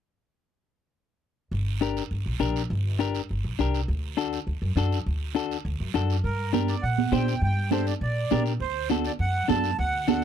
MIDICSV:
0, 0, Header, 1, 5, 480
1, 0, Start_track
1, 0, Key_signature, -2, "minor"
1, 0, Tempo, 295130
1, 2479, Time_signature, 4, 2, 24, 8
1, 16656, End_track
2, 0, Start_track
2, 0, Title_t, "Accordion"
2, 0, Program_c, 0, 21
2, 10153, Note_on_c, 0, 70, 86
2, 10602, Note_off_c, 0, 70, 0
2, 10875, Note_on_c, 0, 74, 66
2, 11103, Note_on_c, 0, 78, 89
2, 11124, Note_off_c, 0, 74, 0
2, 11605, Note_off_c, 0, 78, 0
2, 11619, Note_on_c, 0, 79, 89
2, 12055, Note_off_c, 0, 79, 0
2, 12088, Note_on_c, 0, 79, 102
2, 12529, Note_off_c, 0, 79, 0
2, 12565, Note_on_c, 0, 72, 74
2, 12784, Note_off_c, 0, 72, 0
2, 12803, Note_on_c, 0, 74, 72
2, 12910, Note_off_c, 0, 74, 0
2, 13052, Note_on_c, 0, 74, 88
2, 13714, Note_off_c, 0, 74, 0
2, 14006, Note_on_c, 0, 72, 89
2, 14448, Note_off_c, 0, 72, 0
2, 14738, Note_on_c, 0, 74, 74
2, 14841, Note_off_c, 0, 74, 0
2, 14971, Note_on_c, 0, 78, 97
2, 15410, Note_off_c, 0, 78, 0
2, 15448, Note_on_c, 0, 81, 93
2, 15888, Note_off_c, 0, 81, 0
2, 15924, Note_on_c, 0, 78, 108
2, 16394, Note_off_c, 0, 78, 0
2, 16419, Note_on_c, 0, 78, 82
2, 16654, Note_off_c, 0, 78, 0
2, 16656, End_track
3, 0, Start_track
3, 0, Title_t, "Clean electric guitar"
3, 0, Program_c, 1, 27
3, 2943, Note_on_c, 1, 62, 66
3, 2952, Note_on_c, 1, 67, 62
3, 2961, Note_on_c, 1, 70, 67
3, 3287, Note_off_c, 1, 62, 0
3, 3293, Note_off_c, 1, 67, 0
3, 3293, Note_off_c, 1, 70, 0
3, 3901, Note_on_c, 1, 62, 70
3, 3901, Note_on_c, 1, 67, 66
3, 3912, Note_on_c, 1, 70, 74
3, 4245, Note_off_c, 1, 67, 0
3, 4247, Note_off_c, 1, 62, 0
3, 4251, Note_off_c, 1, 70, 0
3, 4863, Note_on_c, 1, 62, 64
3, 4869, Note_on_c, 1, 67, 62
3, 4884, Note_on_c, 1, 70, 73
3, 5207, Note_off_c, 1, 62, 0
3, 5212, Note_off_c, 1, 67, 0
3, 5214, Note_off_c, 1, 70, 0
3, 5837, Note_on_c, 1, 62, 71
3, 5855, Note_on_c, 1, 67, 66
3, 5865, Note_on_c, 1, 70, 72
3, 6174, Note_off_c, 1, 62, 0
3, 6184, Note_off_c, 1, 67, 0
3, 6185, Note_off_c, 1, 70, 0
3, 6782, Note_on_c, 1, 62, 69
3, 6791, Note_on_c, 1, 69, 73
3, 6796, Note_on_c, 1, 66, 58
3, 7127, Note_off_c, 1, 62, 0
3, 7129, Note_off_c, 1, 66, 0
3, 7131, Note_off_c, 1, 69, 0
3, 7755, Note_on_c, 1, 62, 79
3, 7766, Note_on_c, 1, 66, 66
3, 7777, Note_on_c, 1, 69, 86
3, 8092, Note_off_c, 1, 62, 0
3, 8098, Note_off_c, 1, 66, 0
3, 8104, Note_off_c, 1, 69, 0
3, 8696, Note_on_c, 1, 62, 66
3, 8709, Note_on_c, 1, 66, 58
3, 8718, Note_on_c, 1, 69, 78
3, 9043, Note_off_c, 1, 62, 0
3, 9049, Note_off_c, 1, 66, 0
3, 9054, Note_off_c, 1, 69, 0
3, 9664, Note_on_c, 1, 62, 76
3, 9671, Note_on_c, 1, 66, 68
3, 9682, Note_on_c, 1, 69, 85
3, 10008, Note_off_c, 1, 62, 0
3, 10008, Note_off_c, 1, 66, 0
3, 10016, Note_off_c, 1, 69, 0
3, 10618, Note_on_c, 1, 62, 60
3, 10630, Note_on_c, 1, 67, 56
3, 10639, Note_on_c, 1, 70, 70
3, 10964, Note_off_c, 1, 62, 0
3, 10970, Note_off_c, 1, 67, 0
3, 10974, Note_off_c, 1, 70, 0
3, 11579, Note_on_c, 1, 67, 57
3, 11586, Note_on_c, 1, 62, 66
3, 11593, Note_on_c, 1, 72, 76
3, 11924, Note_off_c, 1, 67, 0
3, 11927, Note_off_c, 1, 62, 0
3, 11931, Note_off_c, 1, 72, 0
3, 12551, Note_on_c, 1, 62, 58
3, 12561, Note_on_c, 1, 67, 49
3, 12564, Note_on_c, 1, 69, 63
3, 12891, Note_off_c, 1, 62, 0
3, 12891, Note_off_c, 1, 67, 0
3, 12896, Note_off_c, 1, 69, 0
3, 13516, Note_on_c, 1, 62, 63
3, 13528, Note_on_c, 1, 67, 68
3, 13537, Note_on_c, 1, 70, 63
3, 13852, Note_off_c, 1, 62, 0
3, 13859, Note_off_c, 1, 67, 0
3, 13860, Note_off_c, 1, 70, 0
3, 14469, Note_on_c, 1, 62, 58
3, 14480, Note_on_c, 1, 66, 59
3, 14494, Note_on_c, 1, 69, 67
3, 14808, Note_off_c, 1, 62, 0
3, 14816, Note_off_c, 1, 66, 0
3, 14818, Note_off_c, 1, 69, 0
3, 15422, Note_on_c, 1, 62, 65
3, 15430, Note_on_c, 1, 66, 48
3, 15434, Note_on_c, 1, 69, 79
3, 15766, Note_off_c, 1, 66, 0
3, 15767, Note_off_c, 1, 62, 0
3, 15771, Note_off_c, 1, 69, 0
3, 16389, Note_on_c, 1, 62, 59
3, 16400, Note_on_c, 1, 66, 51
3, 16403, Note_on_c, 1, 69, 69
3, 16656, Note_off_c, 1, 62, 0
3, 16656, Note_off_c, 1, 66, 0
3, 16656, Note_off_c, 1, 69, 0
3, 16656, End_track
4, 0, Start_track
4, 0, Title_t, "Upright bass"
4, 0, Program_c, 2, 32
4, 2463, Note_on_c, 2, 31, 91
4, 3237, Note_off_c, 2, 31, 0
4, 3431, Note_on_c, 2, 31, 78
4, 3626, Note_off_c, 2, 31, 0
4, 3671, Note_on_c, 2, 34, 77
4, 3867, Note_off_c, 2, 34, 0
4, 3896, Note_on_c, 2, 34, 85
4, 4289, Note_off_c, 2, 34, 0
4, 4392, Note_on_c, 2, 31, 96
4, 5163, Note_off_c, 2, 31, 0
4, 5374, Note_on_c, 2, 31, 75
4, 5560, Note_off_c, 2, 31, 0
4, 5602, Note_on_c, 2, 34, 75
4, 5792, Note_off_c, 2, 34, 0
4, 5835, Note_on_c, 2, 36, 80
4, 6220, Note_off_c, 2, 36, 0
4, 6314, Note_on_c, 2, 38, 91
4, 7084, Note_off_c, 2, 38, 0
4, 7266, Note_on_c, 2, 38, 82
4, 7463, Note_off_c, 2, 38, 0
4, 7509, Note_on_c, 2, 42, 89
4, 7705, Note_off_c, 2, 42, 0
4, 7735, Note_on_c, 2, 42, 92
4, 8128, Note_off_c, 2, 42, 0
4, 8235, Note_on_c, 2, 38, 93
4, 9004, Note_off_c, 2, 38, 0
4, 9186, Note_on_c, 2, 38, 91
4, 9383, Note_off_c, 2, 38, 0
4, 9437, Note_on_c, 2, 42, 81
4, 9629, Note_off_c, 2, 42, 0
4, 9673, Note_on_c, 2, 42, 84
4, 10059, Note_off_c, 2, 42, 0
4, 10146, Note_on_c, 2, 43, 89
4, 10919, Note_off_c, 2, 43, 0
4, 11109, Note_on_c, 2, 46, 88
4, 11496, Note_off_c, 2, 46, 0
4, 11578, Note_on_c, 2, 46, 89
4, 11970, Note_off_c, 2, 46, 0
4, 12061, Note_on_c, 2, 43, 98
4, 12835, Note_off_c, 2, 43, 0
4, 13028, Note_on_c, 2, 46, 99
4, 13416, Note_off_c, 2, 46, 0
4, 13523, Note_on_c, 2, 46, 100
4, 13904, Note_off_c, 2, 46, 0
4, 13983, Note_on_c, 2, 38, 89
4, 14756, Note_off_c, 2, 38, 0
4, 14950, Note_on_c, 2, 42, 87
4, 15336, Note_off_c, 2, 42, 0
4, 15434, Note_on_c, 2, 42, 100
4, 15819, Note_off_c, 2, 42, 0
4, 15915, Note_on_c, 2, 38, 101
4, 16656, Note_off_c, 2, 38, 0
4, 16656, End_track
5, 0, Start_track
5, 0, Title_t, "Drums"
5, 2485, Note_on_c, 9, 74, 67
5, 2648, Note_off_c, 9, 74, 0
5, 2959, Note_on_c, 9, 73, 64
5, 3121, Note_off_c, 9, 73, 0
5, 3200, Note_on_c, 9, 73, 72
5, 3363, Note_off_c, 9, 73, 0
5, 3431, Note_on_c, 9, 74, 55
5, 3593, Note_off_c, 9, 74, 0
5, 3922, Note_on_c, 9, 73, 65
5, 4084, Note_off_c, 9, 73, 0
5, 4162, Note_on_c, 9, 73, 60
5, 4324, Note_off_c, 9, 73, 0
5, 4409, Note_on_c, 9, 74, 64
5, 4572, Note_off_c, 9, 74, 0
5, 4885, Note_on_c, 9, 73, 64
5, 5048, Note_off_c, 9, 73, 0
5, 5116, Note_on_c, 9, 73, 72
5, 5278, Note_off_c, 9, 73, 0
5, 5357, Note_on_c, 9, 74, 52
5, 5519, Note_off_c, 9, 74, 0
5, 5842, Note_on_c, 9, 73, 60
5, 6004, Note_off_c, 9, 73, 0
5, 6088, Note_on_c, 9, 73, 64
5, 6250, Note_off_c, 9, 73, 0
5, 6326, Note_on_c, 9, 74, 64
5, 6488, Note_off_c, 9, 74, 0
5, 6806, Note_on_c, 9, 73, 69
5, 6969, Note_off_c, 9, 73, 0
5, 7037, Note_on_c, 9, 73, 64
5, 7200, Note_off_c, 9, 73, 0
5, 7278, Note_on_c, 9, 74, 55
5, 7441, Note_off_c, 9, 74, 0
5, 7759, Note_on_c, 9, 73, 63
5, 7922, Note_off_c, 9, 73, 0
5, 8010, Note_on_c, 9, 73, 65
5, 8173, Note_off_c, 9, 73, 0
5, 8239, Note_on_c, 9, 74, 60
5, 8401, Note_off_c, 9, 74, 0
5, 8725, Note_on_c, 9, 73, 67
5, 8888, Note_off_c, 9, 73, 0
5, 8967, Note_on_c, 9, 73, 65
5, 9129, Note_off_c, 9, 73, 0
5, 9209, Note_on_c, 9, 74, 58
5, 9371, Note_off_c, 9, 74, 0
5, 9683, Note_on_c, 9, 73, 61
5, 9846, Note_off_c, 9, 73, 0
5, 9921, Note_on_c, 9, 73, 70
5, 10083, Note_off_c, 9, 73, 0
5, 10171, Note_on_c, 9, 74, 62
5, 10333, Note_off_c, 9, 74, 0
5, 10627, Note_on_c, 9, 73, 70
5, 10642, Note_on_c, 9, 63, 67
5, 10790, Note_off_c, 9, 73, 0
5, 10804, Note_off_c, 9, 63, 0
5, 10868, Note_on_c, 9, 73, 69
5, 11031, Note_off_c, 9, 73, 0
5, 11121, Note_on_c, 9, 74, 60
5, 11283, Note_off_c, 9, 74, 0
5, 11357, Note_on_c, 9, 63, 61
5, 11519, Note_off_c, 9, 63, 0
5, 11594, Note_on_c, 9, 63, 78
5, 11603, Note_on_c, 9, 73, 70
5, 11757, Note_off_c, 9, 63, 0
5, 11765, Note_off_c, 9, 73, 0
5, 11841, Note_on_c, 9, 73, 68
5, 12004, Note_off_c, 9, 73, 0
5, 12092, Note_on_c, 9, 74, 63
5, 12254, Note_off_c, 9, 74, 0
5, 12537, Note_on_c, 9, 63, 72
5, 12557, Note_on_c, 9, 73, 59
5, 12699, Note_off_c, 9, 63, 0
5, 12719, Note_off_c, 9, 73, 0
5, 12797, Note_on_c, 9, 73, 70
5, 12959, Note_off_c, 9, 73, 0
5, 13039, Note_on_c, 9, 74, 65
5, 13202, Note_off_c, 9, 74, 0
5, 13509, Note_on_c, 9, 73, 68
5, 13527, Note_on_c, 9, 63, 77
5, 13671, Note_off_c, 9, 73, 0
5, 13690, Note_off_c, 9, 63, 0
5, 13756, Note_on_c, 9, 73, 59
5, 13919, Note_off_c, 9, 73, 0
5, 13994, Note_on_c, 9, 74, 61
5, 14156, Note_off_c, 9, 74, 0
5, 14467, Note_on_c, 9, 73, 63
5, 14493, Note_on_c, 9, 63, 66
5, 14630, Note_off_c, 9, 73, 0
5, 14655, Note_off_c, 9, 63, 0
5, 14710, Note_on_c, 9, 73, 71
5, 14873, Note_off_c, 9, 73, 0
5, 14950, Note_on_c, 9, 74, 55
5, 15113, Note_off_c, 9, 74, 0
5, 15443, Note_on_c, 9, 73, 62
5, 15450, Note_on_c, 9, 63, 78
5, 15605, Note_off_c, 9, 73, 0
5, 15612, Note_off_c, 9, 63, 0
5, 15676, Note_on_c, 9, 73, 63
5, 15839, Note_off_c, 9, 73, 0
5, 15918, Note_on_c, 9, 74, 68
5, 16080, Note_off_c, 9, 74, 0
5, 16392, Note_on_c, 9, 73, 63
5, 16403, Note_on_c, 9, 63, 81
5, 16555, Note_off_c, 9, 73, 0
5, 16565, Note_off_c, 9, 63, 0
5, 16656, End_track
0, 0, End_of_file